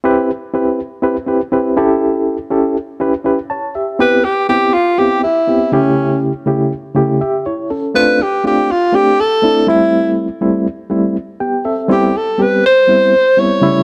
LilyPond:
<<
  \new Staff \with { instrumentName = "Tenor saxophone" } { \time 4/4 \key c \major \tempo 4 = 122 r1 | r1 | b'8 g'8 g'8 f'8 g'8 e'4 cis'8~ | cis'8 r2. r8 |
b'8 g'8 g'8 f'8 g'8 a'4 e'8~ | e'8 r2. r8 | g'8 a'8 b'8 c''4. des''4 | }
  \new Staff \with { instrumentName = "Reed electric piano" } { \time 4/4 \key c \major << { r1 | r2. <cis'' a''>8 <g' e''>8~ | <g' e''>8 r2. r8 | r2 r8 <g' e''>8 <e' cis''>8 <cis' a'>8~ |
<cis' a'>8 r2. r8 | r2. <b g' g''>8 <c' a' e''>8~ | <c' a' e''>8 r2. r8 | } \\ { <c' e' g' b'>8 r8 <c' e' g' b'>8 r8 <c' e' g' b'>16 r16 <c' e' g' b'>16 r16 <c' e' g' b'>8 <cis' e' g' a'>8~ | <cis' e' g' a'>8 r8 <cis' e' g' a'>8 r8 <cis' e' g' b'>16 r16 <cis' e' g' b'>16 r4 r16 | <b c' e' g'>8 r8 <b c' e' g'>8 r8 <b c' e' g'>8 r8 <b c' e' g'>8 <cis a cis' e' g'>8~ | <cis a cis' e' g'>8 r8 <cis a cis' e' g'>8 r8 <cis a cis' e' g'>8 r4. |
<a c' d' f'>8 r8 <a c' d' f'>8 r8 <a c' d' g'>8 r8 <a c' d' e'>8 <g a c' e'>8~ | <g a c' e'>8 r8 <g a c' e'>8 r8 <g a c' e'>8 r4. | <g b c' e'>8 r8 <g b c' g'>8 r8 <g b c' e'>8 r8 <g b c' e'>8 <cis g a cis' e'>8 | } >> }
>>